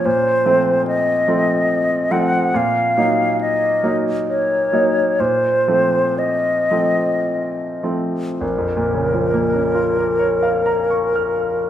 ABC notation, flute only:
X:1
M:3/4
L:1/8
Q:1/4=64
K:Bbm
V:1 name="Flute"
c2 e3 g | f2 e z d2 | c2 e3 z | B6 |]